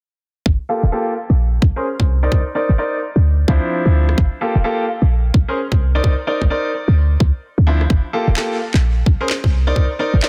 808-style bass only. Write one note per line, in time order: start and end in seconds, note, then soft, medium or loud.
0.46 0.57 G1 medium
0.83 0.90 D1 medium
1.30 1.59 A#1 loud
1.62 1.73 A#1 loud
2.00 2.29 C2 medium
2.32 2.43 C2 medium
2.69 2.76 G1 medium
3.16 3.45 D2 medium
3.48 3.59 D2 loud
3.86 4.15 D2 medium
4.18 4.29 G1 medium
4.55 4.62 D1 medium
5.02 5.31 A#1 medium
5.34 5.45 A#1 loud
5.72 6.01 C2 medium
6.04 6.15 C2 loud
6.42 6.48 G1 medium
6.88 7.17 D2 medium
7.20 7.31 D2 loud
7.58 7.87 D2 medium
7.90 8.01 G1 medium
8.28 8.35 D1 medium
8.74 9.03 A#1 medium
9.06 9.17 A#1 loud
9.44 9.73 C2 medium
9.76 9.87 C2 medium
10.14 10.21 G1 medium